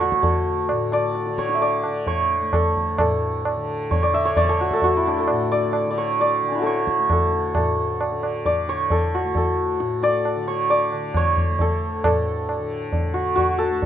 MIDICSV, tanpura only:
0, 0, Header, 1, 2, 480
1, 0, Start_track
1, 0, Tempo, 457666
1, 730, Time_signature, 5, 2, 24, 8
1, 7444, Tempo, 448430
1, 14678, End_track
2, 0, Start_track
2, 0, Title_t, "Tanpura"
2, 0, Program_c, 0, 104
2, 0, Note_on_c, 0, 38, 64
2, 0, Note_on_c, 0, 45, 58
2, 0, Note_on_c, 0, 50, 55
2, 136, Note_off_c, 0, 38, 0
2, 140, Note_on_c, 0, 38, 60
2, 735, Note_off_c, 0, 45, 0
2, 739, Note_on_c, 0, 45, 60
2, 1348, Note_off_c, 0, 50, 0
2, 1348, Note_on_c, 0, 50, 54
2, 1945, Note_off_c, 0, 50, 0
2, 1945, Note_on_c, 0, 50, 56
2, 2522, Note_off_c, 0, 38, 0
2, 2526, Note_on_c, 0, 38, 60
2, 3141, Note_off_c, 0, 45, 0
2, 3145, Note_on_c, 0, 45, 58
2, 3745, Note_off_c, 0, 50, 0
2, 3745, Note_on_c, 0, 50, 58
2, 4339, Note_off_c, 0, 50, 0
2, 4339, Note_on_c, 0, 50, 59
2, 4953, Note_off_c, 0, 38, 0
2, 4957, Note_on_c, 0, 38, 57
2, 5560, Note_off_c, 0, 45, 0
2, 5565, Note_on_c, 0, 45, 61
2, 6151, Note_off_c, 0, 50, 0
2, 6151, Note_on_c, 0, 50, 59
2, 6742, Note_off_c, 0, 50, 0
2, 6742, Note_on_c, 0, 50, 54
2, 7319, Note_off_c, 0, 38, 0
2, 7323, Note_on_c, 0, 38, 58
2, 7909, Note_off_c, 0, 45, 0
2, 7913, Note_on_c, 0, 45, 56
2, 8530, Note_off_c, 0, 50, 0
2, 8530, Note_on_c, 0, 50, 53
2, 9134, Note_off_c, 0, 50, 0
2, 9134, Note_on_c, 0, 50, 55
2, 9728, Note_off_c, 0, 38, 0
2, 9732, Note_on_c, 0, 38, 56
2, 10329, Note_off_c, 0, 45, 0
2, 10334, Note_on_c, 0, 45, 57
2, 10940, Note_off_c, 0, 50, 0
2, 10940, Note_on_c, 0, 50, 52
2, 11552, Note_off_c, 0, 50, 0
2, 11552, Note_on_c, 0, 50, 54
2, 12131, Note_off_c, 0, 38, 0
2, 12135, Note_on_c, 0, 38, 60
2, 12723, Note_off_c, 0, 45, 0
2, 12727, Note_on_c, 0, 45, 57
2, 13327, Note_off_c, 0, 50, 0
2, 13327, Note_on_c, 0, 50, 53
2, 13915, Note_off_c, 0, 50, 0
2, 13915, Note_on_c, 0, 50, 55
2, 14504, Note_off_c, 0, 38, 0
2, 14509, Note_on_c, 0, 38, 63
2, 14678, Note_off_c, 0, 38, 0
2, 14678, Note_off_c, 0, 45, 0
2, 14678, Note_off_c, 0, 50, 0
2, 14678, End_track
0, 0, End_of_file